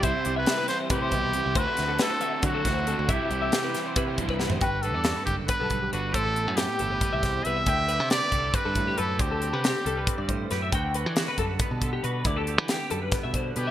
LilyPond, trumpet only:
\new Staff \with { instrumentName = "Trumpet" } { \time 7/8 \key g \major \tempo 4 = 138 c''8. b'8. c''8 g'4. | b'4 a'4 fis'4. | g'2~ g'8 r4 | b'8 a'4 g'8 b'4 fis'8 |
a'4 g'2 e''8~ | e''4 d''4 b'4 a'8 | g'2. r8 | r2. r8 |
r2. g'8 | }